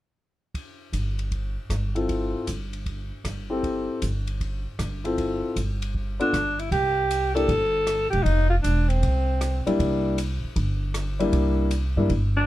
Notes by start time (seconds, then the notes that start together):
0.54 kick, ride
0.93 G1, hi-hat pedal, ride
1.19 ride
1.32 kick, ride
1.70 G1, cross-stick, hi-hat pedal, ride
1.95 C4 E4 F4 A4, ride
2.09 kick, ride
2.47 G1, hi-hat pedal, ride
2.73 ride
2.86 kick, ride
3.24 G1, cross-stick, hi-hat pedal, ride
3.50 C4 E4 G4 A4
3.63 kick, ride
4.02 G1, hi-hat pedal, ride
4.27 ride
4.41 kick, ride
4.79 G1, cross-stick, hi-hat pedal, ride
5.04 C4 E4 F4 A4, ride
5.18 kick, ride
5.56 G1, hi-hat pedal, ride
5.82 ride
5.95 kick
6.20 B3 D4 F4 A4, ride
6.33 G1, cross-stick, hi-hat pedal, ride
6.59 E4, ride
6.71 C2 G4, kick, ride
7.11 hi-hat pedal, ride
7.35 A#3 D4 E4 G4 A4, ride
7.48 G1, kick, ride
7.87 cross-stick, hi-hat pedal, ride
8.10 E1 G4, ride
8.23 F1 D#4, kick, ride
8.50 F4
8.62 E1 D4, hi-hat pedal, ride
8.89 C4, ride
9.02 C2, kick, ride
9.41 cross-stick, hi-hat pedal, ride
9.66 G3 A#3 D4 E4, muted upright bass stroke, ride
9.79 C2, kick, ride
10.18 hi-hat pedal, ride
10.44 muted upright bass stroke
10.56 G1, kick, ride
10.94 cross-stick, hi-hat pedal, ride
11.19 G3 A#3 D4 E4, ride
11.32 C2, kick, ride
11.71 hi-hat pedal, ride
11.96 G2 G3 A#3 D4 E4
12.10 G1, kick, ride
12.37 D4